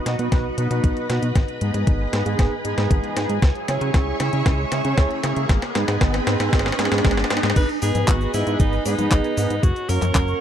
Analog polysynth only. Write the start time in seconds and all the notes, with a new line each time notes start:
0.06 B3 D#4 F#4 D#5
0.19 B3 D#4 F#4 B4
0.58 B3 D#4 F#4 B4
0.71 B3 D#4 F#4 B4
1.10 B3 D#4 F#4 B4
1.61 G#3 B3 D#4 G#4
2.13 G#3 B3 D#4 B4
2.26 G#3 B3 D#4 G#4
2.65 G#3 B3 D#4 G#4
2.78 G#3 B3 D#4 G#4
3.17 G#3 B3 D#4 G#4
3.68 C#4 E4 G#4 C#5
4.20 C#4 E4 G#4 E5
4.33 C#4 E4 G#4 C#5
4.72 C#4 E4 G#4 C#5
4.85 C#4 E4 G#4 C#5
5.24 C#4 E4 G#4 C#5
5.75 G#3 B3 D#4 G#4
6.27 G#3 B3 D#4 B4
6.40 G#3 B3 D#4 G#4
6.79 G#3 B3 D#4 G#4
6.92 G#3 B3 D#4 G#4
7.30 G#3 B3 D#4 G#4
7.82 B3 D#4 G#4 B4
8.34 B3 D#4 G#4 D#5
8.47 B3 D#4 G#4 B4
8.86 B3 D#4 G#4 B4
8.98 B3 D#4 G#4 B4
9.37 B3 D#4 G#4 B4
9.89 A#3 C#4 F#4 A#4